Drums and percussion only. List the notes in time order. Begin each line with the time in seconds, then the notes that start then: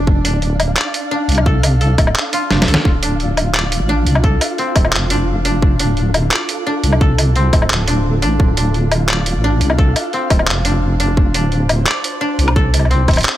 0.07 kick
0.25 closed hi-hat
0.42 closed hi-hat
0.60 closed hi-hat, low woodblock
0.77 clap
0.94 closed hi-hat
1.29 closed hi-hat
1.32 closed hi-hat
1.35 closed hi-hat, low woodblock
1.46 kick
1.63 closed hi-hat, low woodblock
1.81 closed hi-hat
1.98 kick, closed hi-hat, low woodblock
2.07 low woodblock
2.16 clap
2.33 closed hi-hat
2.51 snare
2.62 snare
2.68 closed hi-hat
2.74 snare
2.85 kick
3.03 closed hi-hat
3.20 closed hi-hat
3.37 closed hi-hat, low woodblock
3.55 clap
3.72 closed hi-hat
4.07 closed hi-hat
4.15 low woodblock
4.24 kick
4.41 closed hi-hat, low woodblock
4.58 closed hi-hat
4.76 kick, closed hi-hat, low woodblock
4.85 low woodblock
4.93 clap
5.10 closed hi-hat
5.45 closed hi-hat
5.62 kick
5.79 closed hi-hat
5.97 closed hi-hat
6.14 closed hi-hat, low woodblock
6.31 clap
6.49 closed hi-hat
6.84 closed hi-hat
6.93 low woodblock
7.01 kick
7.18 closed hi-hat, low woodblock
7.36 closed hi-hat
7.53 kick, closed hi-hat, low woodblock
7.62 low woodblock
7.70 clap
7.88 closed hi-hat
8.22 closed hi-hat
8.40 kick
8.57 closed hi-hat
8.74 closed hi-hat
8.92 closed hi-hat, low woodblock
9.09 clap
9.26 closed hi-hat
9.61 closed hi-hat
9.70 low woodblock
9.79 kick
9.96 closed hi-hat, low woodblock
10.13 closed hi-hat
10.30 kick, closed hi-hat, low woodblock
10.39 low woodblock
10.48 clap
10.65 closed hi-hat
11.00 closed hi-hat
11.17 kick
11.34 closed hi-hat
11.52 closed hi-hat
11.69 closed hi-hat, low woodblock
11.87 clap
12.04 closed hi-hat
12.39 closed hi-hat
12.48 low woodblock
12.56 kick
12.74 closed hi-hat, low woodblock
12.79 low woodblock
12.85 low woodblock
12.91 closed hi-hat
13.08 kick, closed hi-hat, low woodblock
13.11 closed hi-hat
13.13 closed hi-hat
13.16 closed hi-hat, low woodblock
13.18 closed hi-hat
13.21 closed hi-hat
13.23 clap, closed hi-hat